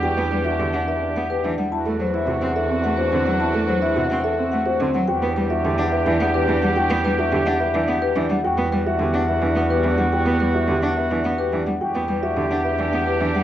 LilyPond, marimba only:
\new Staff \with { instrumentName = "Marimba" } { \time 3/4 \key e \minor \tempo 4 = 107 g''16 r16 b'16 e''16 r16 fis''16 e''16 r16 fis''16 b'16 r16 fis''16 | a''16 r16 c''16 e''16 r16 fis''16 e''16 r16 fis''16 c''16 r16 fis''16 | a''16 r16 c''16 e''16 r16 fis''16 e''16 r16 fis''16 c''16 r16 fis''16 | g''16 r16 b'16 e''16 r16 fis''16 e''16 r16 fis''16 b'16 r16 fis''16 |
g''16 r16 b'16 e''16 r16 fis''16 e''16 r16 fis''16 b'16 r16 fis''16 | g''16 r16 b'16 e''16 r16 fis''16 e''16 r16 fis''16 b'16 r16 fis''16 | g''16 r16 b'16 e''16 r16 fis''16 e''16 r16 fis''16 b'16 r16 fis''16 | g''16 r16 b'16 e''16 r16 fis''16 e''16 r16 fis''16 b'16 r16 fis''16 | }